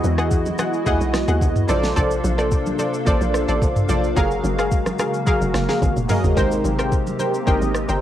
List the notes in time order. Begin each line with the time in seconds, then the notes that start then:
Already playing: E3 G#3 B3 E4 F#4 G#4 D#5
0.04 E2, high conga, shaker
0.18 G#4 D#5 F#5, cross-stick, shaker
0.31 kick, shaker
0.46 high conga, shaker
0.58 G#4 D#5 F#5, cross-stick, high conga, shaker
0.73 shaker
0.85 D#2 E3 E4 F#4 G#4 D#5 F#5, kick, shaker
1.01 B1, high conga, shaker
1.14 cross-stick, snare, shaker
1.28 D#2 G#4 D#5 F#5, shaker
1.42 kick, low conga, shaker
1.56 mid tom, shaker
1.68 A#1 C3 A#3 D4 F4 A4 C5 D5 F5, cross-stick, high conga, low conga, shaker
1.84 snare, shaker
1.96 A#1 A4 C5 D5, kick, low conga, shaker
2.11 shaker
2.24 A#1, high conga, shaker
2.38 A4 C5 D5, cross-stick, shaker
2.51 kick, shaker
2.66 high conga, shaker
2.79 A4 C5 D5, high conga, shaker
2.94 shaker
3.05 A1 A#3 F4 A4 C5 D5, kick, shaker
3.21 A#1, high conga, shaker
3.34 cross-stick, shaker
3.48 A1 A4 C5 D5, shaker
3.62 kick, low conga, shaker
3.76 mid tom, shaker
3.88 A#1 A#3 F4 A4 C5 D5, high conga, low conga, shaker
4.04 shaker
4.15 F#1 C#3 F#3 G#3 F#4 G#4 A#4 F5, kick, low conga, shaker
4.31 shaker
4.44 F#1, high conga, shaker
4.58 G#4 A#4 F5, cross-stick, shaker
4.72 kick, shaker
4.86 cross-stick, high conga, shaker
4.99 G#4 A#4 F5, cross-stick, high conga, shaker
5.14 shaker
5.25 F#3 F#4 G#4 A#4 F5, kick, shaker
5.41 F1, high conga, shaker
5.54 F#1, cross-stick, snare, shaker
5.69 G#4 A#4 F5, snare, shaker
5.82 G#1, kick, high tom, low conga, shaker
5.96 F1, mid tom, shaker
6.08 F#3 F#4 G#4 A#4 D#5 F5, mid tom, open hi-hat, high conga, low conga, shaker
6.24 F#1, floor tom, shaker
6.35 G#1 C3 G#3 C4 D#4 G4 A#4 C5 G5, kick, low conga, shaker
6.51 shaker
6.64 G#1, high conga, shaker
6.79 A#4 C5 G5, cross-stick, shaker
6.92 kick, shaker
7.07 high conga, shaker
7.19 A#4 C5 G5, high conga, shaker
7.34 shaker
7.46 G1 G#3 D#4 G4 A#4 C5 D#5 G5, kick, shaker
7.62 G#1, high conga, shaker
7.75 cross-stick, shaker
7.89 G1 A#4 C5 G5, shaker